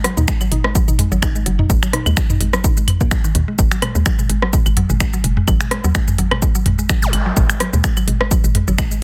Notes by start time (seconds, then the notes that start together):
0.04 F#3, cross-stick, open hi-hat
0.17 D#2 D#4, high tom, shaker
0.28 G#3, finger snap, kick, shaker
0.41 F#3, claves, shaker
0.51 G#1 D#4, open hi-hat, high tom
0.64 G#3, cross-stick
0.75 F#3, kick, shaker
0.88 G#1 D#4, high tom, shaker
0.99 G#3, mid tom, open hi-hat
1.12 G#1 F#3, shaker
1.22 D#4, finger snap, kick, high tom, claves, shaker
1.35 G#3, shaker
1.46 F#1 F#3, open hi-hat
1.59 D#4, mid tom, high tom
1.70 G#1 G#3, kick, shaker
1.83 F#3, finger snap, shaker
1.93 D#4, cross-stick, open hi-hat, high tom
2.06 D#2 G#3, claves, shaker
2.17 F#3, finger snap, kick, shaker
2.30 D#4, mid tom, high tom, shaker
2.41 G#1 G#3, open hi-hat
2.53 F#3, cross-stick, shaker
2.64 D#4, kick, high tom, shaker
2.77 G#3, shaker
2.88 mid tom, open hi-hat, claves
3.01 F#1 A#3, kick, high tom, shaker
3.11 F#3, finger snap, kick, shaker
3.24 D#3, shaker
3.35 D#2 D#3, open hi-hat, high tom
3.48 G#3
3.59 G#1 G#3, kick, shaker
3.72 F#3, finger snap, shaker
3.82 G#3, cross-stick, open hi-hat, high tom, claves
3.95 D#2 G#3, shaker
4.06 F#3, finger snap, kick, shaker
4.19 G#3, high tom, shaker
4.29 G#1 G#3, open hi-hat
4.42 F#3, cross-stick
4.53 G#3, kick, high tom, shaker
4.66 G#1 G#3, claves, shaker
4.77 F#3, mid tom, open hi-hat
4.90 G#1 G#3, high tom, shaker
5.00 G#3, finger snap, kick, shaker
5.13 F#3, shaker
5.24 F#1 G#3, open hi-hat, high tom
5.37 G#3, mid tom
5.48 G#1 F#3, kick, claves, shaker
5.61 G#3, finger snap, high tom, shaker
5.71 G#3, cross-stick, open hi-hat
5.84 D#2 F#3, shaker
5.95 G#3, finger snap, kick, high tom, shaker
6.08 G#3, mid tom, shaker
6.18 G#1 F#3, open hi-hat
6.31 G#3, cross-stick, high tom, claves
6.42 G#3, kick, shaker
6.55 F#3, shaker
6.66 G#1 G#3, mid tom, open hi-hat, high tom
6.79 G#3, shaker
6.89 F#3, finger snap, kick, shaker
7.02 G#3, high tom, zap, shaker
7.13 G#1 G#3, open hi-hat, claves
7.26 F#3
7.37 G#1 G#3, kick, high tom, shaker
7.50 G#3, finger snap, shaker
7.60 F#3, cross-stick, open hi-hat
7.73 D#2 G#3, high tom, shaker
7.84 G#3, finger snap, kick, shaker
7.97 F#3, claves, shaker
8.08 G#1 G#3, open hi-hat, high tom
8.21 G#3, cross-stick
8.31 F#3, kick, shaker
8.44 G#1 G#3, high tom, shaker
8.55 G#3, mid tom, open hi-hat
8.68 G#1 F#3, shaker
8.78 G#3, finger snap, kick, high tom, claves, shaker
8.91 G#3, shaker